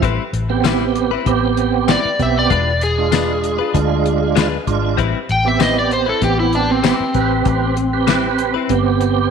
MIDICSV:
0, 0, Header, 1, 7, 480
1, 0, Start_track
1, 0, Key_signature, 0, "minor"
1, 0, Tempo, 619835
1, 22, Time_signature, 4, 2, 24, 8
1, 7205, End_track
2, 0, Start_track
2, 0, Title_t, "Electric slide guitar"
2, 0, Program_c, 0, 29
2, 1479, Note_on_c, 0, 74, 81
2, 1703, Note_off_c, 0, 74, 0
2, 1723, Note_on_c, 0, 76, 72
2, 1834, Note_off_c, 0, 76, 0
2, 1848, Note_on_c, 0, 74, 86
2, 2181, Note_off_c, 0, 74, 0
2, 2194, Note_on_c, 0, 68, 86
2, 3596, Note_off_c, 0, 68, 0
2, 4117, Note_on_c, 0, 79, 73
2, 4231, Note_off_c, 0, 79, 0
2, 4242, Note_on_c, 0, 76, 78
2, 4345, Note_off_c, 0, 76, 0
2, 4359, Note_on_c, 0, 75, 82
2, 4472, Note_off_c, 0, 75, 0
2, 4484, Note_on_c, 0, 74, 72
2, 4586, Note_off_c, 0, 74, 0
2, 4593, Note_on_c, 0, 72, 69
2, 4709, Note_off_c, 0, 72, 0
2, 4718, Note_on_c, 0, 69, 68
2, 4823, Note_off_c, 0, 69, 0
2, 4832, Note_on_c, 0, 67, 85
2, 4948, Note_off_c, 0, 67, 0
2, 4954, Note_on_c, 0, 64, 77
2, 5061, Note_off_c, 0, 64, 0
2, 5073, Note_on_c, 0, 62, 71
2, 5189, Note_off_c, 0, 62, 0
2, 5198, Note_on_c, 0, 60, 65
2, 5301, Note_off_c, 0, 60, 0
2, 5310, Note_on_c, 0, 60, 85
2, 6716, Note_off_c, 0, 60, 0
2, 7205, End_track
3, 0, Start_track
3, 0, Title_t, "Clean electric guitar"
3, 0, Program_c, 1, 27
3, 18, Note_on_c, 1, 55, 77
3, 25, Note_on_c, 1, 60, 78
3, 31, Note_on_c, 1, 64, 84
3, 36, Note_on_c, 1, 71, 80
3, 168, Note_off_c, 1, 55, 0
3, 172, Note_off_c, 1, 60, 0
3, 175, Note_off_c, 1, 64, 0
3, 177, Note_off_c, 1, 71, 0
3, 495, Note_on_c, 1, 55, 80
3, 502, Note_on_c, 1, 60, 78
3, 509, Note_on_c, 1, 64, 94
3, 514, Note_on_c, 1, 71, 92
3, 646, Note_off_c, 1, 55, 0
3, 650, Note_off_c, 1, 60, 0
3, 654, Note_off_c, 1, 64, 0
3, 656, Note_off_c, 1, 71, 0
3, 860, Note_on_c, 1, 71, 59
3, 875, Note_on_c, 1, 64, 52
3, 886, Note_on_c, 1, 60, 48
3, 1003, Note_off_c, 1, 71, 0
3, 1010, Note_off_c, 1, 64, 0
3, 1016, Note_off_c, 1, 60, 0
3, 1456, Note_on_c, 1, 55, 75
3, 1463, Note_on_c, 1, 60, 77
3, 1468, Note_on_c, 1, 64, 90
3, 1475, Note_on_c, 1, 71, 80
3, 1607, Note_off_c, 1, 55, 0
3, 1610, Note_off_c, 1, 60, 0
3, 1613, Note_off_c, 1, 64, 0
3, 1616, Note_off_c, 1, 71, 0
3, 1937, Note_on_c, 1, 56, 64
3, 1944, Note_on_c, 1, 62, 71
3, 1950, Note_on_c, 1, 65, 64
3, 1954, Note_on_c, 1, 71, 78
3, 2087, Note_off_c, 1, 56, 0
3, 2090, Note_off_c, 1, 62, 0
3, 2094, Note_off_c, 1, 65, 0
3, 2096, Note_off_c, 1, 71, 0
3, 2415, Note_on_c, 1, 56, 69
3, 2423, Note_on_c, 1, 62, 79
3, 2427, Note_on_c, 1, 65, 83
3, 2433, Note_on_c, 1, 71, 75
3, 2566, Note_off_c, 1, 56, 0
3, 2570, Note_off_c, 1, 62, 0
3, 2572, Note_off_c, 1, 65, 0
3, 2575, Note_off_c, 1, 71, 0
3, 2777, Note_on_c, 1, 71, 54
3, 2793, Note_on_c, 1, 65, 50
3, 2805, Note_on_c, 1, 62, 43
3, 2921, Note_off_c, 1, 71, 0
3, 2929, Note_off_c, 1, 65, 0
3, 2935, Note_off_c, 1, 62, 0
3, 3373, Note_on_c, 1, 56, 83
3, 3381, Note_on_c, 1, 62, 90
3, 3386, Note_on_c, 1, 65, 87
3, 3392, Note_on_c, 1, 71, 93
3, 3525, Note_off_c, 1, 56, 0
3, 3529, Note_off_c, 1, 62, 0
3, 3531, Note_off_c, 1, 65, 0
3, 3535, Note_off_c, 1, 71, 0
3, 3852, Note_on_c, 1, 55, 73
3, 3858, Note_on_c, 1, 60, 75
3, 3863, Note_on_c, 1, 64, 84
3, 3868, Note_on_c, 1, 71, 74
3, 4004, Note_off_c, 1, 55, 0
3, 4008, Note_off_c, 1, 60, 0
3, 4010, Note_off_c, 1, 64, 0
3, 4013, Note_off_c, 1, 71, 0
3, 4330, Note_on_c, 1, 55, 71
3, 4337, Note_on_c, 1, 60, 76
3, 4345, Note_on_c, 1, 64, 75
3, 4349, Note_on_c, 1, 71, 72
3, 4484, Note_off_c, 1, 55, 0
3, 4487, Note_off_c, 1, 60, 0
3, 4491, Note_off_c, 1, 64, 0
3, 4493, Note_off_c, 1, 71, 0
3, 4694, Note_on_c, 1, 71, 50
3, 4707, Note_on_c, 1, 64, 45
3, 4719, Note_on_c, 1, 60, 42
3, 4840, Note_off_c, 1, 71, 0
3, 4846, Note_off_c, 1, 64, 0
3, 4852, Note_off_c, 1, 60, 0
3, 5292, Note_on_c, 1, 55, 68
3, 5298, Note_on_c, 1, 60, 82
3, 5304, Note_on_c, 1, 64, 81
3, 5308, Note_on_c, 1, 71, 87
3, 5445, Note_off_c, 1, 55, 0
3, 5448, Note_off_c, 1, 60, 0
3, 5451, Note_off_c, 1, 64, 0
3, 5453, Note_off_c, 1, 71, 0
3, 6250, Note_on_c, 1, 55, 76
3, 6259, Note_on_c, 1, 60, 83
3, 6264, Note_on_c, 1, 64, 88
3, 6269, Note_on_c, 1, 71, 82
3, 6404, Note_off_c, 1, 55, 0
3, 6409, Note_off_c, 1, 60, 0
3, 6411, Note_off_c, 1, 64, 0
3, 6414, Note_off_c, 1, 71, 0
3, 6614, Note_on_c, 1, 71, 55
3, 6627, Note_on_c, 1, 64, 49
3, 6640, Note_on_c, 1, 60, 50
3, 6761, Note_off_c, 1, 71, 0
3, 6767, Note_off_c, 1, 64, 0
3, 6774, Note_off_c, 1, 60, 0
3, 7205, End_track
4, 0, Start_track
4, 0, Title_t, "Tonewheel organ"
4, 0, Program_c, 2, 16
4, 384, Note_on_c, 2, 59, 80
4, 385, Note_on_c, 2, 60, 75
4, 391, Note_on_c, 2, 67, 94
4, 859, Note_off_c, 2, 59, 0
4, 859, Note_off_c, 2, 60, 0
4, 862, Note_off_c, 2, 67, 0
4, 975, Note_on_c, 2, 59, 96
4, 979, Note_on_c, 2, 60, 83
4, 984, Note_on_c, 2, 67, 112
4, 1551, Note_off_c, 2, 59, 0
4, 1553, Note_off_c, 2, 60, 0
4, 1555, Note_off_c, 2, 67, 0
4, 1698, Note_on_c, 2, 59, 75
4, 1701, Note_on_c, 2, 60, 72
4, 1703, Note_on_c, 2, 67, 86
4, 1939, Note_off_c, 2, 59, 0
4, 1941, Note_off_c, 2, 60, 0
4, 1942, Note_off_c, 2, 67, 0
4, 2305, Note_on_c, 2, 62, 60
4, 2306, Note_on_c, 2, 56, 66
4, 2312, Note_on_c, 2, 65, 71
4, 2779, Note_off_c, 2, 56, 0
4, 2779, Note_off_c, 2, 62, 0
4, 2783, Note_off_c, 2, 65, 0
4, 2894, Note_on_c, 2, 56, 91
4, 2898, Note_on_c, 2, 62, 83
4, 2900, Note_on_c, 2, 65, 103
4, 3470, Note_off_c, 2, 56, 0
4, 3472, Note_off_c, 2, 62, 0
4, 3473, Note_off_c, 2, 65, 0
4, 3615, Note_on_c, 2, 56, 88
4, 3618, Note_on_c, 2, 62, 82
4, 3622, Note_on_c, 2, 65, 101
4, 3858, Note_off_c, 2, 56, 0
4, 3859, Note_off_c, 2, 62, 0
4, 3861, Note_off_c, 2, 65, 0
4, 4218, Note_on_c, 2, 59, 63
4, 4223, Note_on_c, 2, 60, 59
4, 4225, Note_on_c, 2, 67, 76
4, 4696, Note_off_c, 2, 59, 0
4, 4698, Note_off_c, 2, 60, 0
4, 4699, Note_off_c, 2, 67, 0
4, 4809, Note_on_c, 2, 59, 77
4, 4812, Note_on_c, 2, 60, 76
4, 4814, Note_on_c, 2, 67, 83
4, 5388, Note_off_c, 2, 59, 0
4, 5390, Note_off_c, 2, 60, 0
4, 5391, Note_off_c, 2, 67, 0
4, 5534, Note_on_c, 2, 71, 77
4, 5539, Note_on_c, 2, 60, 67
4, 5543, Note_on_c, 2, 67, 82
4, 6012, Note_off_c, 2, 71, 0
4, 6015, Note_off_c, 2, 60, 0
4, 6017, Note_off_c, 2, 67, 0
4, 6143, Note_on_c, 2, 71, 78
4, 6145, Note_on_c, 2, 60, 69
4, 6149, Note_on_c, 2, 67, 89
4, 6619, Note_off_c, 2, 71, 0
4, 6620, Note_off_c, 2, 60, 0
4, 6622, Note_off_c, 2, 67, 0
4, 6737, Note_on_c, 2, 59, 91
4, 6739, Note_on_c, 2, 60, 88
4, 6742, Note_on_c, 2, 67, 109
4, 7205, Note_off_c, 2, 59, 0
4, 7205, Note_off_c, 2, 60, 0
4, 7205, Note_off_c, 2, 67, 0
4, 7205, End_track
5, 0, Start_track
5, 0, Title_t, "Fingered electric bass"
5, 0, Program_c, 3, 33
5, 20, Note_on_c, 3, 33, 99
5, 131, Note_off_c, 3, 33, 0
5, 255, Note_on_c, 3, 33, 83
5, 890, Note_off_c, 3, 33, 0
5, 977, Note_on_c, 3, 33, 103
5, 1511, Note_off_c, 3, 33, 0
5, 1698, Note_on_c, 3, 35, 86
5, 1910, Note_off_c, 3, 35, 0
5, 1940, Note_on_c, 3, 28, 97
5, 2784, Note_off_c, 3, 28, 0
5, 2901, Note_on_c, 3, 38, 89
5, 3533, Note_off_c, 3, 38, 0
5, 3617, Note_on_c, 3, 32, 84
5, 3829, Note_off_c, 3, 32, 0
5, 3857, Note_on_c, 3, 33, 90
5, 3969, Note_off_c, 3, 33, 0
5, 4099, Note_on_c, 3, 33, 76
5, 4733, Note_off_c, 3, 33, 0
5, 4816, Note_on_c, 3, 33, 102
5, 5350, Note_off_c, 3, 33, 0
5, 5534, Note_on_c, 3, 33, 88
5, 5748, Note_off_c, 3, 33, 0
5, 5775, Note_on_c, 3, 33, 100
5, 6623, Note_off_c, 3, 33, 0
5, 6733, Note_on_c, 3, 31, 93
5, 7205, Note_off_c, 3, 31, 0
5, 7205, End_track
6, 0, Start_track
6, 0, Title_t, "Muted fingered electric bass strokes"
6, 1587, Note_on_c, 9, 29, 34
6, 1664, Note_off_c, 9, 29, 0
6, 5421, Note_on_c, 9, 29, 36
6, 5499, Note_off_c, 9, 29, 0
6, 7205, End_track
7, 0, Start_track
7, 0, Title_t, "Drums"
7, 20, Note_on_c, 9, 36, 101
7, 20, Note_on_c, 9, 42, 73
7, 97, Note_off_c, 9, 36, 0
7, 98, Note_off_c, 9, 42, 0
7, 260, Note_on_c, 9, 42, 55
7, 337, Note_off_c, 9, 42, 0
7, 498, Note_on_c, 9, 42, 68
7, 498, Note_on_c, 9, 54, 97
7, 505, Note_on_c, 9, 38, 99
7, 576, Note_off_c, 9, 42, 0
7, 576, Note_off_c, 9, 54, 0
7, 583, Note_off_c, 9, 38, 0
7, 739, Note_on_c, 9, 42, 58
7, 817, Note_off_c, 9, 42, 0
7, 978, Note_on_c, 9, 42, 73
7, 979, Note_on_c, 9, 36, 83
7, 1055, Note_off_c, 9, 42, 0
7, 1056, Note_off_c, 9, 36, 0
7, 1218, Note_on_c, 9, 42, 54
7, 1295, Note_off_c, 9, 42, 0
7, 1457, Note_on_c, 9, 42, 75
7, 1457, Note_on_c, 9, 54, 98
7, 1464, Note_on_c, 9, 38, 105
7, 1534, Note_off_c, 9, 42, 0
7, 1534, Note_off_c, 9, 54, 0
7, 1541, Note_off_c, 9, 38, 0
7, 1699, Note_on_c, 9, 42, 49
7, 1700, Note_on_c, 9, 36, 70
7, 1777, Note_off_c, 9, 36, 0
7, 1777, Note_off_c, 9, 42, 0
7, 1938, Note_on_c, 9, 42, 70
7, 1940, Note_on_c, 9, 36, 107
7, 2016, Note_off_c, 9, 42, 0
7, 2017, Note_off_c, 9, 36, 0
7, 2179, Note_on_c, 9, 42, 60
7, 2256, Note_off_c, 9, 42, 0
7, 2417, Note_on_c, 9, 42, 77
7, 2417, Note_on_c, 9, 54, 93
7, 2424, Note_on_c, 9, 38, 90
7, 2494, Note_off_c, 9, 42, 0
7, 2494, Note_off_c, 9, 54, 0
7, 2501, Note_off_c, 9, 38, 0
7, 2661, Note_on_c, 9, 42, 60
7, 2739, Note_off_c, 9, 42, 0
7, 2900, Note_on_c, 9, 36, 85
7, 2901, Note_on_c, 9, 42, 83
7, 2978, Note_off_c, 9, 36, 0
7, 2978, Note_off_c, 9, 42, 0
7, 3141, Note_on_c, 9, 42, 64
7, 3219, Note_off_c, 9, 42, 0
7, 3380, Note_on_c, 9, 42, 77
7, 3380, Note_on_c, 9, 54, 109
7, 3387, Note_on_c, 9, 38, 103
7, 3458, Note_off_c, 9, 42, 0
7, 3458, Note_off_c, 9, 54, 0
7, 3465, Note_off_c, 9, 38, 0
7, 3619, Note_on_c, 9, 36, 75
7, 3619, Note_on_c, 9, 42, 58
7, 3697, Note_off_c, 9, 36, 0
7, 3697, Note_off_c, 9, 42, 0
7, 3859, Note_on_c, 9, 36, 103
7, 3860, Note_on_c, 9, 42, 76
7, 3936, Note_off_c, 9, 36, 0
7, 3937, Note_off_c, 9, 42, 0
7, 4098, Note_on_c, 9, 42, 57
7, 4176, Note_off_c, 9, 42, 0
7, 4335, Note_on_c, 9, 42, 75
7, 4335, Note_on_c, 9, 54, 90
7, 4342, Note_on_c, 9, 38, 99
7, 4413, Note_off_c, 9, 42, 0
7, 4413, Note_off_c, 9, 54, 0
7, 4420, Note_off_c, 9, 38, 0
7, 4579, Note_on_c, 9, 42, 58
7, 4656, Note_off_c, 9, 42, 0
7, 4814, Note_on_c, 9, 42, 78
7, 4816, Note_on_c, 9, 36, 79
7, 4891, Note_off_c, 9, 42, 0
7, 4894, Note_off_c, 9, 36, 0
7, 5055, Note_on_c, 9, 42, 52
7, 5132, Note_off_c, 9, 42, 0
7, 5294, Note_on_c, 9, 42, 77
7, 5294, Note_on_c, 9, 54, 106
7, 5301, Note_on_c, 9, 38, 107
7, 5372, Note_off_c, 9, 42, 0
7, 5372, Note_off_c, 9, 54, 0
7, 5379, Note_off_c, 9, 38, 0
7, 5532, Note_on_c, 9, 42, 52
7, 5535, Note_on_c, 9, 36, 73
7, 5609, Note_off_c, 9, 42, 0
7, 5613, Note_off_c, 9, 36, 0
7, 5772, Note_on_c, 9, 42, 70
7, 5776, Note_on_c, 9, 36, 106
7, 5849, Note_off_c, 9, 42, 0
7, 5853, Note_off_c, 9, 36, 0
7, 6015, Note_on_c, 9, 42, 57
7, 6093, Note_off_c, 9, 42, 0
7, 6253, Note_on_c, 9, 42, 76
7, 6253, Note_on_c, 9, 54, 92
7, 6260, Note_on_c, 9, 38, 97
7, 6330, Note_off_c, 9, 42, 0
7, 6330, Note_off_c, 9, 54, 0
7, 6337, Note_off_c, 9, 38, 0
7, 6492, Note_on_c, 9, 42, 62
7, 6570, Note_off_c, 9, 42, 0
7, 6732, Note_on_c, 9, 42, 78
7, 6736, Note_on_c, 9, 36, 79
7, 6810, Note_off_c, 9, 42, 0
7, 6813, Note_off_c, 9, 36, 0
7, 6975, Note_on_c, 9, 42, 58
7, 7052, Note_off_c, 9, 42, 0
7, 7205, End_track
0, 0, End_of_file